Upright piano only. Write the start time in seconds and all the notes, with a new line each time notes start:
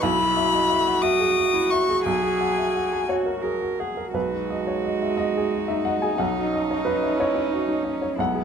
0.03 B1
0.19 F#4
0.37 E5
0.53 D#5
0.70 E5
0.87 F#5
1.03 E5
1.20 G#4
1.36 F#4
1.54 E4
1.72 E5
1.89 G#4
2.06 B1
2.23 G#4
2.41 F#5
2.59 E5
2.75 F#5
2.93 G#5
3.08 C#5 F#5
3.26 A#4
3.44 G#4
3.62 F#4
3.80 F#5
3.97 A#4
4.14 B1 B4
4.32 F#4
4.50 D#5
4.67 C#5
4.85 D#5
5.02 E5
5.17 D#5
5.37 G#4
5.54 F#4
5.68 D#4 E5
5.85 D#5 F#5
6.02 G#4 G#5
6.18 B1 F#5
6.36 F#4
6.54 D#5
6.71 C#5
6.85 B4 D#5
7.03 E5
7.20 C#5 D#5
7.35 C#5
7.53 F#4
7.69 D#4
7.85 D#5
8.02 C#5
8.18 B1 F#5
8.35 G#4